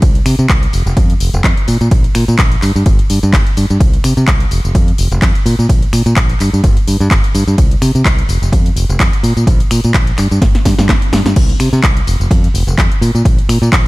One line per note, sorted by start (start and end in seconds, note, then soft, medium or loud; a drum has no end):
0.02 0.18 C2 loud
0.02 kick loud
0.02 closed hi-hat medium
0.02 ride medium
0.02 tambourine soft
0.15 closed hi-hat soft
0.26 0.34 C3 medium
0.26 finger snap medium
0.26 open hi-hat loud
0.26 tambourine medium
0.39 0.46 C3 loud
0.39 closed hi-hat soft
0.39 tambourine soft
0.49 0.65 C2 medium
0.49 kick loud
0.49 clap loud
0.49 closed hi-hat medium
0.49 ride medium
0.49 tambourine soft
0.63 closed hi-hat medium
0.73 0.81 F1 medium
0.73 open hi-hat loud
0.73 tambourine medium
0.86 0.93 F1 medium
0.86 tambourine soft
0.97 1.12 F2 loud
0.97 kick loud
0.97 closed hi-hat medium
0.97 ride medium
0.97 tambourine soft
1.10 closed hi-hat medium
1.20 1.29 F1 medium
1.20 open hi-hat loud
1.20 tambourine medium
1.33 1.40 F1 loud
1.33 closed hi-hat soft
1.33 tambourine soft
1.44 1.52 F2 loud
1.44 kick loud
1.44 clap loud
1.44 closed hi-hat medium
1.44 ride medium
1.44 tambourine soft
1.57 closed hi-hat medium
1.68 1.76 A#2 loud
1.68 open hi-hat loud
1.68 tambourine medium
1.81 1.87 A#2 medium
1.81 closed hi-hat soft
1.81 tambourine soft
1.91 2.04 A#1 loud
1.91 kick loud
1.91 closed hi-hat medium
1.91 ride medium
1.91 tambourine soft
2.04 muted fingered electric bass stroke soft
2.04 closed hi-hat medium
2.15 2.23 A#2 medium
2.15 finger snap medium
2.15 open hi-hat loud
2.15 tambourine medium
2.28 2.35 A#2 loud
2.28 closed hi-hat soft
2.28 tambourine soft
2.39 2.54 A#1 medium
2.39 kick loud
2.39 clap loud
2.39 closed hi-hat medium
2.39 ride medium
2.52 closed hi-hat soft
2.62 2.70 G2 medium
2.62 clap soft
2.62 open hi-hat loud
2.62 tambourine medium
2.76 2.82 G2 medium
2.76 tambourine soft
2.86 2.99 G1 loud
2.86 kick loud
2.86 closed hi-hat medium
2.86 ride medium
2.86 tambourine soft
2.99 muted fingered electric bass stroke soft
2.99 closed hi-hat medium
3.10 3.18 G2 medium
3.10 open hi-hat loud
3.10 tambourine medium
3.23 3.35 G2 loud
3.23 closed hi-hat soft
3.23 tambourine soft
3.33 3.41 G1 medium
3.33 kick loud
3.33 clap loud
3.33 closed hi-hat medium
3.33 ride medium
3.33 tambourine soft
3.47 closed hi-hat medium
3.57 3.65 G2 medium
3.57 open hi-hat loud
3.57 tambourine medium
3.70 3.77 G2 medium
3.70 closed hi-hat soft
3.70 tambourine soft
3.80 3.96 C2 loud
3.80 kick loud
3.80 closed hi-hat medium
3.80 ride medium
3.80 tambourine soft
3.94 closed hi-hat soft
4.04 4.12 C3 medium
4.04 finger snap medium
4.04 open hi-hat loud
4.04 tambourine medium
4.17 4.24 C3 loud
4.17 closed hi-hat soft
4.17 tambourine soft
4.28 4.43 C2 medium
4.28 kick loud
4.28 clap loud
4.28 closed hi-hat medium
4.28 ride medium
4.28 tambourine soft
4.40 closed hi-hat medium
4.51 4.59 F1 medium
4.51 open hi-hat medium
4.51 tambourine medium
4.65 4.71 F1 medium
4.65 tambourine soft
4.75 4.90 F2 loud
4.75 kick loud
4.75 closed hi-hat medium
4.75 ride medium
4.75 tambourine soft
4.88 closed hi-hat soft
4.98 5.07 F1 medium
4.98 open hi-hat loud
4.98 tambourine medium
5.11 5.18 F1 loud
5.11 closed hi-hat soft
5.11 tambourine soft
5.22 5.30 F2 loud
5.22 kick loud
5.22 clap loud
5.22 closed hi-hat medium
5.22 ride medium
5.22 tambourine soft
5.35 closed hi-hat medium
5.46 5.54 A#2 loud
5.46 open hi-hat medium
5.46 tambourine medium
5.59 5.65 A#2 loud
5.59 closed hi-hat soft
5.59 tambourine soft
5.69 5.82 A#1 loud
5.69 kick loud
5.69 closed hi-hat medium
5.69 ride medium
5.69 tambourine soft
5.83 muted fingered electric bass stroke soft
5.83 closed hi-hat medium
5.93 6.01 A#2 medium
5.93 finger snap medium
5.93 open hi-hat loud
5.93 tambourine medium
6.06 6.13 A#2 medium
6.06 closed hi-hat soft
6.06 tambourine soft
6.16 6.32 A#1 medium
6.16 kick loud
6.16 clap loud
6.16 closed hi-hat medium
6.16 ride medium
6.16 tambourine soft
6.29 closed hi-hat medium
6.40 6.48 G2 medium
6.40 clap soft
6.40 open hi-hat medium
6.40 tambourine medium
6.53 6.60 G2 medium
6.53 tambourine soft
6.64 6.76 G1 loud
6.64 kick loud
6.64 closed hi-hat medium
6.64 ride medium
6.64 tambourine soft
6.77 muted fingered electric bass stroke soft
6.77 closed hi-hat medium
6.88 6.96 G2 medium
6.88 open hi-hat loud
6.88 tambourine medium
7.00 7.07 G2 loud
7.00 closed hi-hat soft
7.00 tambourine soft
7.11 7.19 G1 loud
7.11 kick loud
7.11 clap loud
7.11 closed hi-hat medium
7.11 ride medium
7.11 tambourine soft
7.24 closed hi-hat medium
7.35 7.43 G2 loud
7.35 open hi-hat medium
7.35 tambourine medium
7.47 7.54 G2 medium
7.47 closed hi-hat soft
7.47 tambourine soft
7.58 7.74 C2 loud
7.58 kick loud
7.58 closed hi-hat medium
7.58 ride medium
7.58 tambourine soft
7.71 closed hi-hat medium
7.82 7.90 C3 medium
7.82 finger snap medium
7.82 open hi-hat loud
7.82 tambourine medium
7.95 8.02 C3 loud
7.95 closed hi-hat soft
7.95 tambourine soft
8.05 8.21 C2 medium
8.05 kick loud
8.05 clap loud
8.05 closed hi-hat medium
8.05 ride medium
8.05 tambourine soft
8.19 closed hi-hat medium
8.29 8.37 F1 medium
8.29 open hi-hat medium
8.29 tambourine medium
8.42 8.49 F1 medium
8.42 tambourine soft
8.52 8.68 F2 loud
8.52 kick loud
8.52 closed hi-hat medium
8.52 ride medium
8.52 tambourine soft
8.66 closed hi-hat medium
8.76 8.84 F1 medium
8.76 open hi-hat loud
8.76 tambourine medium
8.89 8.96 F1 loud
8.89 closed hi-hat soft
8.89 tambourine soft
9.00 9.08 F2 loud
9.00 kick loud
9.00 clap loud
9.00 closed hi-hat medium
9.00 ride medium
9.00 tambourine soft
9.13 closed hi-hat medium
9.23 9.32 A#2 loud
9.23 open hi-hat medium
9.23 tambourine medium
9.37 9.43 A#2 medium
9.37 closed hi-hat soft
9.37 tambourine soft
9.47 9.60 A#1 loud
9.47 kick loud
9.47 closed hi-hat medium
9.47 ride medium
9.47 tambourine soft
9.60 muted fingered electric bass stroke soft
9.60 closed hi-hat medium
9.71 9.79 A#2 medium
9.71 finger snap medium
9.71 open hi-hat loud
9.71 tambourine medium
9.84 9.91 A#2 loud
9.84 closed hi-hat soft
9.84 tambourine soft
9.94 10.10 A#1 medium
9.94 kick loud
9.94 clap loud
9.94 closed hi-hat medium
9.94 ride medium
10.07 closed hi-hat medium
10.18 10.26 G2 medium
10.18 finger snap medium
10.18 clap soft
10.18 open hi-hat medium
10.18 tambourine medium
10.31 10.38 G2 medium
10.31 closed hi-hat soft
10.31 tambourine soft
10.42 10.55 G1 loud
10.42 kick loud
10.42 snare medium
10.42 closed hi-hat medium
10.42 ride medium
10.42 tambourine soft
10.55 muted fingered electric bass stroke soft
10.55 snare medium
10.55 closed hi-hat medium
10.65 10.73 G2 medium
10.65 kick medium
10.65 snare medium
10.65 open hi-hat loud
10.65 tambourine medium
10.79 10.90 G2 loud
10.79 snare medium
10.79 closed hi-hat soft
10.79 tambourine soft
10.89 10.97 G1 medium
10.89 kick loud
10.89 snare medium
10.89 clap loud
10.89 closed hi-hat medium
10.89 ride medium
10.89 tambourine soft
11.02 closed hi-hat medium
11.13 11.21 G2 medium
11.13 snare loud
11.13 open hi-hat medium
11.13 tambourine medium
11.26 11.32 G2 medium
11.26 snare medium
11.26 closed hi-hat soft
11.26 tambourine soft
11.36 11.52 C2 loud
11.36 kick loud
11.36 closed hi-hat medium
11.36 crash medium
11.36 ride medium
11.36 tambourine soft
11.49 closed hi-hat medium
11.60 11.68 C3 medium
11.60 finger snap medium
11.60 open hi-hat loud
11.60 tambourine medium
11.73 11.79 C3 medium
11.73 closed hi-hat soft
11.73 tambourine soft
11.83 11.99 C2 medium
11.83 kick loud
11.83 clap loud
11.83 closed hi-hat medium
11.83 ride medium
11.83 tambourine soft
11.97 closed hi-hat medium
12.07 12.15 F1 medium
12.07 open hi-hat medium
12.07 tambourine medium
12.20 12.27 F1 medium
12.20 tambourine soft
12.31 12.46 F2 loud
12.31 kick loud
12.31 closed hi-hat medium
12.31 ride medium
12.31 tambourine soft
12.44 closed hi-hat medium
12.54 12.62 F1 medium
12.54 open hi-hat loud
12.54 tambourine medium
12.67 12.74 F1 loud
12.67 closed hi-hat soft
12.67 tambourine soft
12.78 12.86 F2 loud
12.78 kick loud
12.78 clap loud
12.78 closed hi-hat medium
12.78 ride medium
12.92 closed hi-hat medium
13.01 13.10 A#2 loud
13.01 open hi-hat medium
13.01 tambourine medium
13.15 13.21 A#2 medium
13.15 closed hi-hat soft
13.15 tambourine soft
13.25 13.38 A#1 loud
13.25 kick loud
13.25 closed hi-hat medium
13.25 ride medium
13.25 tambourine soft
13.38 muted fingered electric bass stroke soft
13.38 closed hi-hat medium
13.49 13.57 A#2 medium
13.49 finger snap medium
13.49 open hi-hat loud
13.49 tambourine medium
13.62 13.68 A#2 loud
13.62 closed hi-hat soft
13.62 tambourine soft
13.72 13.88 A#1 medium
13.72 kick loud
13.72 clap loud
13.72 closed hi-hat medium
13.72 ride medium
13.72 tambourine soft